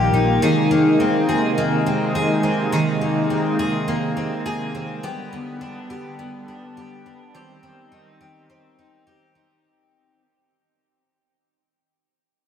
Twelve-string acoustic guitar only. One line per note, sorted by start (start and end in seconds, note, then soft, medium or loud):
0.00 0.42 F3 medium
0.00 0.70 A#3 medium
0.00 0.13 D#4 soft
0.00 0.42 G4 medium
0.14 1.00 D#4 soft
0.42 2.71 D#3 medium
0.42 1.27 G#4 medium
0.71 1.56 A#3 medium
1.00 1.85 C4 medium
1.29 2.14 G#4 medium
1.58 3.00 A#3 medium
1.87 2.42 C4 soft
2.15 2.72 G#4 medium
2.43 3.29 C4 soft
2.72 5.03 D#3 medium
2.72 3.58 G#4 medium
3.01 3.87 A#3 medium
3.30 4.16 C4 medium
3.59 4.45 G#4 medium
3.88 5.03 A#3 medium
4.17 4.73 C4 soft
4.46 5.03 G#4 medium
4.75 5.09 C4 soft
5.03 5.31 B3 medium
5.03 5.90 G4 medium
5.33 6.18 B3 medium
5.61 6.47 D4 medium
5.90 6.77 G4 medium
6.19 7.34 B3 medium
6.48 7.05 D4 soft
6.77 7.35 G4 medium
7.06 7.40 D4 soft
7.35 7.63 C4 medium
7.35 8.20 G4 medium
7.63 8.49 C4 medium
7.92 8.78 D#4 medium
8.21 9.06 G4 medium
8.50 10.21 C4 medium
8.79 9.35 D#4 soft
9.07 10.20 G4 medium
9.35 10.20 D#4 soft